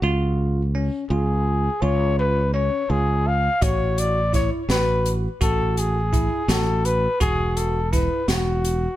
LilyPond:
<<
  \new Staff \with { instrumentName = "Trumpet" } { \time 5/8 \key a \major \tempo 4 = 84 r4. gis'4 | cis''8 b'8 cis''8 gis'8 eis''8 | cis''8 d''8 cis''8 b'8 r8 | a'8 gis'4 a'8 b'8 |
gis'8 a'8 b'8 fis'4 | }
  \new Staff \with { instrumentName = "Tine electric piano" } { \time 5/8 \key a \major eis'4 cis'8 eis'4 | eis'4 cis'8 eis'4 | fis'4 e'8 fis'4 | fis'4 e'8 fis'4 |
fis'4 e'8 fis'4 | }
  \new Staff \with { instrumentName = "Fretless electric bass" } { \clef bass \time 5/8 \key a \major cis,4. cis,4 | cis,4. cis,4 | a,,4. a,,4 | a,,4. a,,4 |
e,,4. e,,4 | }
  \new DrumStaff \with { instrumentName = "Drums" } \drummode { \time 5/8 r4. r4 | r4. r4 | <hh bd>8 hh8 <hh bd sn>8 <hh sn>8 hh8 | <hh bd>8 hh8 <hh bd>8 <hh sn>8 hh8 |
<hh bd>8 hh8 <hh bd sn>8 <hh sn>8 hh8 | }
>>